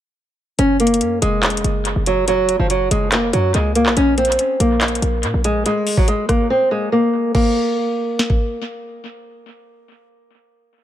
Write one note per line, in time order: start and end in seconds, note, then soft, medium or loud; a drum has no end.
0.59 1.02 F#1 loud
0.59 0.76 C#4 loud
0.59 closed hi-hat medium
0.80 1.20 A#3 medium
0.80 closed hi-hat medium
0.80 open hi-hat medium
0.87 closed hi-hat medium
0.94 closed hi-hat medium
1.01 1.21 F#2 loud
1.01 closed hi-hat medium
1.22 1.63 F1 loud
1.22 2.02 G#3 loud
1.22 closed hi-hat medium
1.43 clap loud
1.43 closed hi-hat soft
1.50 closed hi-hat medium
1.57 closed hi-hat medium
1.64 1.95 F#1 loud
1.64 closed hi-hat medium
1.85 closed hi-hat medium
1.96 2.57 F#1 loud
2.06 2.24 F#3 medium
2.06 closed hi-hat medium
2.28 2.58 F#3 loud
2.28 closed hi-hat medium
2.49 closed hi-hat medium
2.59 2.90 F#1 loud
2.59 2.68 F3 medium
2.70 2.88 F#3 medium
2.70 closed hi-hat medium
2.91 3.32 F#1 loud
2.91 3.09 G#3 medium
2.91 closed hi-hat loud
3.12 3.30 A#3 medium
3.12 clap loud
3.12 closed hi-hat medium
3.33 3.54 F#2 loud
3.33 3.51 F#3 medium
3.33 closed hi-hat medium
3.54 3.88 C#2 loud
3.54 3.72 G#3 loud
3.54 closed hi-hat medium
3.75 3.93 A#3 medium
3.75 closed hi-hat medium
3.86 3.96 A#1 loud
3.86 clap loud
3.97 4.37 A#1 loud
3.97 4.14 C#4 loud
3.97 closed hi-hat medium
4.18 4.58 C4 medium
4.18 closed hi-hat medium
4.18 open hi-hat medium
4.25 closed hi-hat medium
4.32 closed hi-hat medium
4.39 closed hi-hat medium
4.60 5.01 A#1 loud
4.60 5.41 A#3 medium
4.60 closed hi-hat medium
4.81 clap loud
4.81 closed hi-hat soft
4.88 closed hi-hat medium
4.95 closed hi-hat medium
5.02 5.25 A#1 loud
5.02 closed hi-hat medium
5.23 5.33 A#2 loud
5.23 closed hi-hat medium
5.34 5.64 A#1 loud
5.44 5.62 G#3 medium
5.44 closed hi-hat medium
5.66 5.96 G#3 loud
5.66 closed hi-hat medium
5.87 open hi-hat medium
5.97 6.06 F#3 medium
5.97 kick loud
6.08 6.26 G#3 medium
6.08 closed hi-hat medium
6.29 6.46 A#3 medium
6.29 kick loud
6.29 cross-stick medium
6.29 closed hi-hat loud
6.50 6.68 C4 medium
6.71 6.89 G#3 medium
6.92 7.32 A#3 medium
7.35 8.57 A#3 medium
7.35 kick loud
7.35 crash medium
8.19 snare medium
8.30 kick medium